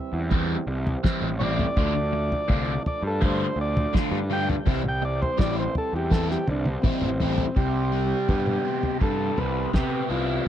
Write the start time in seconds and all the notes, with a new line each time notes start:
Already playing: E3 G3 C4
0.13 E2
0.31 E3 G3 C4 E4, kick, floor tom
0.67 C2
0.87 floor tom
1.03 E3 G3 C4 E4, kick, snare
1.22 A1
1.39 E3 G3 C4 E4 C#5, mid tom
1.43 D5
1.59 floor tom
1.77 D2 D3 F3 A3 D4 F4, kick, floor tom
1.94 muted overdriven electric guitar stroke
2.12 muted overdriven electric guitar stroke
2.32 floor tom
2.48 C2 D3 A3 D4 F4, kick
2.86 D5, floor tom
3.02 G2
3.07 A4
3.21 D3 A3 D4 F4, kick, floor tom
3.25 C5
3.56 D2
3.61 D5
3.77 floor tom, mid tom
3.93 D3 A3 D4 F4, kick, snare
4.12 G2
4.30 D3 A3 D4 F4 G5
4.50 floor tom
4.65 C2 E3 G3 C4 E4, kick, floor tom
4.70 G3 C4
4.83 muted overdriven electric guitar stroke, mid tom
4.89 G5
5.02 D5, muted overdriven electric guitar stroke
5.22 C5, floor tom
5.38 A1 E3 G3 C4 E4 D5, kick, snare
5.60 C5
5.75 A4, floor tom
5.93 E2 G4
6.10 E3 G3 C4 E4 A4, kick, snare
6.31 G4, snare
6.48 C2 D4, high tom
6.65 C4, high tom
6.82 E3 G3 B3 C4 E4, kick, mid tom
6.87 C4
7.01 A1, mid tom
7.20 E3 G3 C4 E4, floor tom
7.38 floor tom
7.56 C2 C3 G4, kick, floor tom
7.92 G3
8.28 G2 B3, kick, floor tom
8.47 mid tom
8.65 C3
8.83 floor tom
9.01 G2 G3 A4, kick
9.37 C2 C3 B4, floor tom
9.73 C3 B3 G4, kick, snare, floor tom
10.10 C2 E4 F4